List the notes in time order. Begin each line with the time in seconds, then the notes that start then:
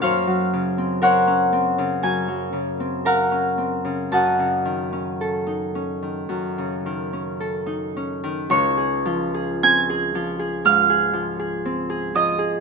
Already playing: A#3 C#4 F#4 A#4
0.02 F#2 C5 C#5 F5
0.27 F#3
0.53 C#3
0.78 C4
1.02 A#4 C5 C#5 F#5
1.27 C#4
1.53 C4
1.78 C#3
2.03 F#2 G#5
2.28 F#3
2.53 C#3
2.80 C4
3.05 A#4 F5 F#5 A#5
3.31 C#4
3.58 C4
3.85 C#3
4.12 F#2 D#5 F#5 A5
4.39 C#3
4.65 D#3
4.93 C#4
5.21 A4
5.47 D#4
5.75 C#4
6.02 D#3
6.29 F#2
6.58 C#3
6.86 D#3
7.13 C#4
7.40 A4
7.66 D#4
7.97 C#4
8.23 D#3
8.50 C#2 C#5 C#6
8.77 G#4
9.05 F3
9.34 G#4
9.63 C4 G#5 G#6
9.90 G#4
10.15 F3
10.39 G#4
10.65 G#2 F5 F6
10.90 G#4
11.13 F3
11.39 G#4
11.65 C4
11.90 G#4
12.15 F3 D#5 D#6
12.39 G#4